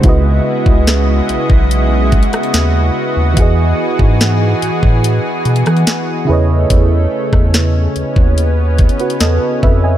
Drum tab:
HH |x-------x---x---x---xxxxx-------|x-------x---x---x---xxxxx-------|x-------x---x---x---xxxxx-------|
SD |--------o-------------r-o-------|--------o-------------r-o-------|------r-o---------------o-------|
BD |o-----o-------o-----o-----------|o-----o-------o-----------------|o-----o-------o-----o-------o---|